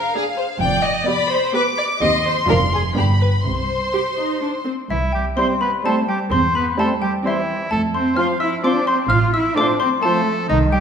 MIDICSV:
0, 0, Header, 1, 12, 480
1, 0, Start_track
1, 0, Key_signature, -3, "minor"
1, 0, Tempo, 466200
1, 641, Time_signature, 3, 2, 24, 8
1, 2568, Tempo, 479233
1, 4984, Key_signature, 0, "major"
1, 5928, Tempo, 464396
1, 11047, End_track
2, 0, Start_track
2, 0, Title_t, "Flute"
2, 0, Program_c, 0, 73
2, 5469, Note_on_c, 0, 84, 48
2, 5553, Note_off_c, 0, 84, 0
2, 5949, Note_on_c, 0, 84, 38
2, 6034, Note_off_c, 0, 84, 0
2, 6890, Note_on_c, 0, 84, 41
2, 6977, Note_off_c, 0, 84, 0
2, 7380, Note_on_c, 0, 84, 38
2, 7466, Note_off_c, 0, 84, 0
2, 8343, Note_on_c, 0, 84, 47
2, 8429, Note_off_c, 0, 84, 0
2, 8816, Note_on_c, 0, 84, 44
2, 8902, Note_off_c, 0, 84, 0
2, 9794, Note_on_c, 0, 84, 51
2, 9878, Note_off_c, 0, 84, 0
2, 10274, Note_on_c, 0, 84, 41
2, 10357, Note_off_c, 0, 84, 0
2, 11047, End_track
3, 0, Start_track
3, 0, Title_t, "Xylophone"
3, 0, Program_c, 1, 13
3, 4982, Note_on_c, 1, 76, 62
3, 5203, Note_off_c, 1, 76, 0
3, 5203, Note_on_c, 1, 79, 59
3, 5431, Note_off_c, 1, 79, 0
3, 5447, Note_on_c, 1, 84, 66
3, 5671, Note_off_c, 1, 84, 0
3, 5688, Note_on_c, 1, 83, 66
3, 5910, Note_off_c, 1, 83, 0
3, 5935, Note_on_c, 1, 81, 78
3, 6158, Note_off_c, 1, 81, 0
3, 6174, Note_on_c, 1, 79, 53
3, 6398, Note_off_c, 1, 79, 0
3, 6411, Note_on_c, 1, 84, 73
3, 6637, Note_off_c, 1, 84, 0
3, 6654, Note_on_c, 1, 83, 62
3, 6880, Note_off_c, 1, 83, 0
3, 6905, Note_on_c, 1, 81, 66
3, 7125, Note_off_c, 1, 81, 0
3, 7136, Note_on_c, 1, 79, 66
3, 7361, Note_off_c, 1, 79, 0
3, 7399, Note_on_c, 1, 76, 67
3, 7838, Note_off_c, 1, 76, 0
3, 7850, Note_on_c, 1, 81, 76
3, 8078, Note_off_c, 1, 81, 0
3, 8094, Note_on_c, 1, 84, 64
3, 8319, Note_off_c, 1, 84, 0
3, 8323, Note_on_c, 1, 89, 78
3, 8554, Note_off_c, 1, 89, 0
3, 8567, Note_on_c, 1, 88, 66
3, 8796, Note_off_c, 1, 88, 0
3, 8816, Note_on_c, 1, 86, 79
3, 9041, Note_off_c, 1, 86, 0
3, 9053, Note_on_c, 1, 84, 71
3, 9279, Note_off_c, 1, 84, 0
3, 9286, Note_on_c, 1, 89, 91
3, 9517, Note_off_c, 1, 89, 0
3, 9534, Note_on_c, 1, 88, 74
3, 9761, Note_off_c, 1, 88, 0
3, 9780, Note_on_c, 1, 86, 82
3, 10004, Note_off_c, 1, 86, 0
3, 10009, Note_on_c, 1, 84, 81
3, 10236, Note_off_c, 1, 84, 0
3, 10245, Note_on_c, 1, 81, 82
3, 10693, Note_off_c, 1, 81, 0
3, 10732, Note_on_c, 1, 75, 74
3, 10953, Note_off_c, 1, 75, 0
3, 10968, Note_on_c, 1, 79, 73
3, 11047, Note_off_c, 1, 79, 0
3, 11047, End_track
4, 0, Start_track
4, 0, Title_t, "Clarinet"
4, 0, Program_c, 2, 71
4, 5455, Note_on_c, 2, 72, 42
4, 5616, Note_off_c, 2, 72, 0
4, 5922, Note_on_c, 2, 72, 48
4, 6088, Note_off_c, 2, 72, 0
4, 6902, Note_on_c, 2, 72, 43
4, 7068, Note_off_c, 2, 72, 0
4, 7375, Note_on_c, 2, 72, 43
4, 7540, Note_off_c, 2, 72, 0
4, 8343, Note_on_c, 2, 72, 41
4, 8508, Note_off_c, 2, 72, 0
4, 8825, Note_on_c, 2, 72, 46
4, 8990, Note_off_c, 2, 72, 0
4, 9801, Note_on_c, 2, 72, 47
4, 9967, Note_off_c, 2, 72, 0
4, 10268, Note_on_c, 2, 72, 53
4, 10433, Note_off_c, 2, 72, 0
4, 11047, End_track
5, 0, Start_track
5, 0, Title_t, "Oboe"
5, 0, Program_c, 3, 68
5, 4979, Note_on_c, 3, 64, 62
5, 5201, Note_off_c, 3, 64, 0
5, 5224, Note_on_c, 3, 67, 57
5, 5330, Note_off_c, 3, 67, 0
5, 5445, Note_on_c, 3, 72, 53
5, 5554, Note_off_c, 3, 72, 0
5, 5696, Note_on_c, 3, 71, 52
5, 5801, Note_off_c, 3, 71, 0
5, 5938, Note_on_c, 3, 69, 55
5, 6045, Note_off_c, 3, 69, 0
5, 6177, Note_on_c, 3, 67, 59
5, 6285, Note_off_c, 3, 67, 0
5, 6410, Note_on_c, 3, 72, 70
5, 6649, Note_off_c, 3, 72, 0
5, 6663, Note_on_c, 3, 71, 58
5, 6770, Note_off_c, 3, 71, 0
5, 6903, Note_on_c, 3, 69, 56
5, 7010, Note_off_c, 3, 69, 0
5, 7144, Note_on_c, 3, 67, 53
5, 7251, Note_off_c, 3, 67, 0
5, 7388, Note_on_c, 3, 64, 55
5, 7856, Note_off_c, 3, 64, 0
5, 7861, Note_on_c, 3, 69, 68
5, 7969, Note_off_c, 3, 69, 0
5, 8099, Note_on_c, 3, 72, 60
5, 8328, Note_on_c, 3, 77, 67
5, 8344, Note_off_c, 3, 72, 0
5, 8558, Note_off_c, 3, 77, 0
5, 8565, Note_on_c, 3, 76, 67
5, 8676, Note_off_c, 3, 76, 0
5, 8805, Note_on_c, 3, 74, 70
5, 9047, Note_off_c, 3, 74, 0
5, 9054, Note_on_c, 3, 72, 67
5, 9163, Note_off_c, 3, 72, 0
5, 9271, Note_on_c, 3, 77, 78
5, 9386, Note_off_c, 3, 77, 0
5, 9526, Note_on_c, 3, 76, 69
5, 9755, Note_off_c, 3, 76, 0
5, 9761, Note_on_c, 3, 74, 64
5, 9874, Note_off_c, 3, 74, 0
5, 10008, Note_on_c, 3, 72, 61
5, 10118, Note_off_c, 3, 72, 0
5, 10228, Note_on_c, 3, 69, 75
5, 10708, Note_off_c, 3, 69, 0
5, 10722, Note_on_c, 3, 63, 72
5, 10832, Note_off_c, 3, 63, 0
5, 10957, Note_on_c, 3, 67, 70
5, 11047, Note_off_c, 3, 67, 0
5, 11047, End_track
6, 0, Start_track
6, 0, Title_t, "Violin section"
6, 0, Program_c, 4, 48
6, 0, Note_on_c, 4, 70, 71
6, 156, Note_off_c, 4, 70, 0
6, 157, Note_on_c, 4, 68, 82
6, 240, Note_off_c, 4, 68, 0
6, 386, Note_on_c, 4, 72, 65
6, 468, Note_off_c, 4, 72, 0
6, 621, Note_on_c, 4, 79, 83
6, 855, Note_on_c, 4, 75, 76
6, 866, Note_off_c, 4, 79, 0
6, 1103, Note_on_c, 4, 74, 81
6, 1108, Note_off_c, 4, 75, 0
6, 1343, Note_on_c, 4, 72, 81
6, 1352, Note_off_c, 4, 74, 0
6, 1591, Note_on_c, 4, 71, 87
6, 1593, Note_off_c, 4, 72, 0
6, 1674, Note_off_c, 4, 71, 0
6, 1833, Note_on_c, 4, 74, 69
6, 1916, Note_off_c, 4, 74, 0
6, 2069, Note_on_c, 4, 75, 81
6, 2313, Note_off_c, 4, 75, 0
6, 2328, Note_on_c, 4, 72, 80
6, 2410, Note_off_c, 4, 72, 0
6, 2566, Note_on_c, 4, 70, 81
6, 2646, Note_off_c, 4, 70, 0
6, 2804, Note_on_c, 4, 68, 57
6, 2884, Note_off_c, 4, 68, 0
6, 3046, Note_on_c, 4, 67, 64
6, 3127, Note_off_c, 4, 67, 0
6, 3280, Note_on_c, 4, 71, 55
6, 3360, Note_off_c, 4, 71, 0
6, 3532, Note_on_c, 4, 72, 58
6, 4722, Note_off_c, 4, 72, 0
6, 5466, Note_on_c, 4, 64, 51
6, 5813, Note_off_c, 4, 64, 0
6, 5935, Note_on_c, 4, 64, 45
6, 6293, Note_off_c, 4, 64, 0
6, 6898, Note_on_c, 4, 64, 56
6, 7256, Note_off_c, 4, 64, 0
6, 7384, Note_on_c, 4, 64, 53
6, 7741, Note_off_c, 4, 64, 0
6, 8340, Note_on_c, 4, 60, 57
6, 8697, Note_off_c, 4, 60, 0
6, 8816, Note_on_c, 4, 60, 52
6, 9175, Note_off_c, 4, 60, 0
6, 9772, Note_on_c, 4, 60, 60
6, 10133, Note_off_c, 4, 60, 0
6, 10257, Note_on_c, 4, 60, 54
6, 10611, Note_off_c, 4, 60, 0
6, 11047, End_track
7, 0, Start_track
7, 0, Title_t, "Violin section"
7, 0, Program_c, 5, 48
7, 0, Note_on_c, 5, 77, 58
7, 622, Note_off_c, 5, 77, 0
7, 655, Note_on_c, 5, 74, 65
7, 1119, Note_off_c, 5, 74, 0
7, 1133, Note_on_c, 5, 83, 66
7, 1598, Note_off_c, 5, 83, 0
7, 1603, Note_on_c, 5, 86, 69
7, 2075, Note_off_c, 5, 86, 0
7, 2080, Note_on_c, 5, 84, 75
7, 3043, Note_off_c, 5, 84, 0
7, 3044, Note_on_c, 5, 83, 56
7, 3518, Note_off_c, 5, 83, 0
7, 3528, Note_on_c, 5, 84, 53
7, 4745, Note_off_c, 5, 84, 0
7, 5464, Note_on_c, 5, 67, 50
7, 5812, Note_off_c, 5, 67, 0
7, 5947, Note_on_c, 5, 67, 46
7, 6300, Note_off_c, 5, 67, 0
7, 6910, Note_on_c, 5, 67, 51
7, 7263, Note_off_c, 5, 67, 0
7, 7392, Note_on_c, 5, 67, 47
7, 7745, Note_off_c, 5, 67, 0
7, 8343, Note_on_c, 5, 65, 55
7, 8698, Note_off_c, 5, 65, 0
7, 8822, Note_on_c, 5, 65, 54
7, 9178, Note_off_c, 5, 65, 0
7, 9796, Note_on_c, 5, 65, 58
7, 10146, Note_off_c, 5, 65, 0
7, 10268, Note_on_c, 5, 65, 50
7, 10616, Note_off_c, 5, 65, 0
7, 11047, End_track
8, 0, Start_track
8, 0, Title_t, "Viola section"
8, 0, Program_c, 6, 48
8, 163, Note_on_c, 6, 62, 51
8, 168, Note_on_c, 6, 68, 55
8, 518, Note_off_c, 6, 62, 0
8, 521, Note_off_c, 6, 68, 0
8, 1110, Note_on_c, 6, 59, 66
8, 1110, Note_on_c, 6, 67, 62
8, 1473, Note_off_c, 6, 59, 0
8, 1473, Note_off_c, 6, 67, 0
8, 1599, Note_on_c, 6, 59, 54
8, 1600, Note_on_c, 6, 67, 65
8, 1960, Note_off_c, 6, 59, 0
8, 1960, Note_off_c, 6, 67, 0
8, 2092, Note_on_c, 6, 60, 60
8, 2092, Note_on_c, 6, 67, 60
8, 2448, Note_off_c, 6, 60, 0
8, 2448, Note_off_c, 6, 67, 0
8, 2561, Note_on_c, 6, 62, 63
8, 2565, Note_on_c, 6, 65, 65
8, 2919, Note_off_c, 6, 62, 0
8, 2921, Note_off_c, 6, 65, 0
8, 3036, Note_on_c, 6, 59, 50
8, 3038, Note_on_c, 6, 62, 50
8, 3399, Note_off_c, 6, 59, 0
8, 3400, Note_off_c, 6, 62, 0
8, 4010, Note_on_c, 6, 67, 63
8, 4090, Note_off_c, 6, 67, 0
8, 4252, Note_on_c, 6, 63, 44
8, 4494, Note_off_c, 6, 63, 0
8, 4495, Note_on_c, 6, 62, 46
8, 4575, Note_off_c, 6, 62, 0
8, 4730, Note_on_c, 6, 60, 39
8, 4810, Note_off_c, 6, 60, 0
8, 5458, Note_on_c, 6, 60, 58
8, 5809, Note_off_c, 6, 60, 0
8, 5932, Note_on_c, 6, 60, 46
8, 6292, Note_off_c, 6, 60, 0
8, 6897, Note_on_c, 6, 60, 56
8, 7255, Note_off_c, 6, 60, 0
8, 7379, Note_on_c, 6, 60, 48
8, 7738, Note_off_c, 6, 60, 0
8, 8336, Note_on_c, 6, 60, 58
8, 8695, Note_off_c, 6, 60, 0
8, 8824, Note_on_c, 6, 60, 57
8, 9179, Note_off_c, 6, 60, 0
8, 9782, Note_on_c, 6, 57, 65
8, 10138, Note_off_c, 6, 57, 0
8, 10260, Note_on_c, 6, 57, 59
8, 10612, Note_off_c, 6, 57, 0
8, 11047, End_track
9, 0, Start_track
9, 0, Title_t, "French horn section"
9, 0, Program_c, 7, 60
9, 5466, Note_on_c, 7, 60, 46
9, 5470, Note_on_c, 7, 55, 43
9, 5626, Note_off_c, 7, 60, 0
9, 5630, Note_off_c, 7, 55, 0
9, 5948, Note_on_c, 7, 55, 43
9, 5955, Note_on_c, 7, 60, 43
9, 6114, Note_off_c, 7, 55, 0
9, 6120, Note_off_c, 7, 60, 0
9, 6881, Note_on_c, 7, 60, 38
9, 6888, Note_on_c, 7, 55, 45
9, 7046, Note_off_c, 7, 60, 0
9, 7053, Note_off_c, 7, 55, 0
9, 7387, Note_on_c, 7, 55, 47
9, 7393, Note_on_c, 7, 60, 49
9, 7553, Note_off_c, 7, 55, 0
9, 7558, Note_off_c, 7, 60, 0
9, 8337, Note_on_c, 7, 53, 48
9, 8342, Note_on_c, 7, 60, 48
9, 8503, Note_off_c, 7, 53, 0
9, 8507, Note_off_c, 7, 60, 0
9, 8819, Note_on_c, 7, 53, 47
9, 8820, Note_on_c, 7, 60, 45
9, 8985, Note_off_c, 7, 53, 0
9, 8986, Note_off_c, 7, 60, 0
9, 9787, Note_on_c, 7, 60, 46
9, 9788, Note_on_c, 7, 53, 49
9, 9953, Note_off_c, 7, 60, 0
9, 9954, Note_off_c, 7, 53, 0
9, 10285, Note_on_c, 7, 60, 55
9, 10286, Note_on_c, 7, 53, 54
9, 10450, Note_off_c, 7, 60, 0
9, 10451, Note_off_c, 7, 53, 0
9, 11047, End_track
10, 0, Start_track
10, 0, Title_t, "Cello section"
10, 0, Program_c, 8, 48
10, 636, Note_on_c, 8, 41, 70
10, 1018, Note_off_c, 8, 41, 0
10, 2079, Note_on_c, 8, 39, 67
10, 2464, Note_off_c, 8, 39, 0
10, 2557, Note_on_c, 8, 41, 61
10, 2939, Note_off_c, 8, 41, 0
10, 3033, Note_on_c, 8, 43, 58
10, 3420, Note_off_c, 8, 43, 0
10, 3521, Note_on_c, 8, 48, 49
10, 3911, Note_off_c, 8, 48, 0
10, 4981, Note_on_c, 8, 52, 56
10, 5061, Note_off_c, 8, 52, 0
10, 5223, Note_on_c, 8, 55, 52
10, 5303, Note_off_c, 8, 55, 0
10, 5450, Note_on_c, 8, 60, 61
10, 5683, Note_on_c, 8, 59, 53
10, 5685, Note_off_c, 8, 60, 0
10, 5763, Note_off_c, 8, 59, 0
10, 5913, Note_on_c, 8, 57, 58
10, 6158, Note_off_c, 8, 57, 0
10, 6160, Note_on_c, 8, 55, 61
10, 6243, Note_off_c, 8, 55, 0
10, 6406, Note_on_c, 8, 60, 63
10, 6489, Note_off_c, 8, 60, 0
10, 6639, Note_on_c, 8, 59, 54
10, 6880, Note_on_c, 8, 57, 58
10, 6884, Note_off_c, 8, 59, 0
10, 6963, Note_off_c, 8, 57, 0
10, 7122, Note_on_c, 8, 55, 55
10, 7205, Note_off_c, 8, 55, 0
10, 7366, Note_on_c, 8, 52, 55
10, 7845, Note_off_c, 8, 52, 0
10, 7850, Note_on_c, 8, 57, 62
10, 7933, Note_off_c, 8, 57, 0
10, 8097, Note_on_c, 8, 60, 59
10, 8320, Note_on_c, 8, 65, 62
10, 8333, Note_off_c, 8, 60, 0
10, 8403, Note_off_c, 8, 65, 0
10, 8566, Note_on_c, 8, 64, 62
10, 8808, Note_off_c, 8, 64, 0
10, 8812, Note_on_c, 8, 62, 60
10, 9047, Note_on_c, 8, 60, 64
10, 9050, Note_off_c, 8, 62, 0
10, 9294, Note_off_c, 8, 60, 0
10, 9294, Note_on_c, 8, 65, 72
10, 9537, Note_on_c, 8, 64, 64
10, 9538, Note_off_c, 8, 65, 0
10, 9776, Note_off_c, 8, 64, 0
10, 9778, Note_on_c, 8, 62, 69
10, 10017, Note_on_c, 8, 60, 65
10, 10020, Note_off_c, 8, 62, 0
10, 10099, Note_off_c, 8, 60, 0
10, 10254, Note_on_c, 8, 57, 62
10, 10721, Note_off_c, 8, 57, 0
10, 10728, Note_on_c, 8, 51, 67
10, 10963, Note_off_c, 8, 51, 0
10, 10965, Note_on_c, 8, 55, 65
10, 11047, Note_off_c, 8, 55, 0
10, 11047, End_track
11, 0, Start_track
11, 0, Title_t, "Bassoon"
11, 0, Program_c, 10, 70
11, 5460, Note_on_c, 10, 55, 46
11, 5620, Note_off_c, 10, 55, 0
11, 5917, Note_on_c, 10, 55, 43
11, 6082, Note_off_c, 10, 55, 0
11, 6884, Note_on_c, 10, 55, 44
11, 7049, Note_off_c, 10, 55, 0
11, 7371, Note_on_c, 10, 55, 44
11, 7536, Note_off_c, 10, 55, 0
11, 8332, Note_on_c, 10, 53, 47
11, 8498, Note_off_c, 10, 53, 0
11, 8808, Note_on_c, 10, 53, 51
11, 8974, Note_off_c, 10, 53, 0
11, 9779, Note_on_c, 10, 53, 50
11, 9944, Note_off_c, 10, 53, 0
11, 10270, Note_on_c, 10, 53, 55
11, 10436, Note_off_c, 10, 53, 0
11, 11047, End_track
12, 0, Start_track
12, 0, Title_t, "Double bass section"
12, 0, Program_c, 11, 48
12, 633, Note_on_c, 11, 29, 75
12, 1017, Note_off_c, 11, 29, 0
12, 2085, Note_on_c, 11, 39, 70
12, 2467, Note_off_c, 11, 39, 0
12, 2569, Note_on_c, 11, 29, 71
12, 2945, Note_off_c, 11, 29, 0
12, 3043, Note_on_c, 11, 31, 58
12, 3426, Note_off_c, 11, 31, 0
12, 3524, Note_on_c, 11, 36, 57
12, 3912, Note_off_c, 11, 36, 0
12, 4976, Note_on_c, 11, 36, 62
12, 5354, Note_off_c, 11, 36, 0
12, 6415, Note_on_c, 11, 40, 62
12, 6797, Note_off_c, 11, 40, 0
12, 7862, Note_on_c, 11, 41, 64
12, 8240, Note_off_c, 11, 41, 0
12, 9295, Note_on_c, 11, 33, 66
12, 9679, Note_off_c, 11, 33, 0
12, 10738, Note_on_c, 11, 36, 66
12, 11047, Note_off_c, 11, 36, 0
12, 11047, End_track
0, 0, End_of_file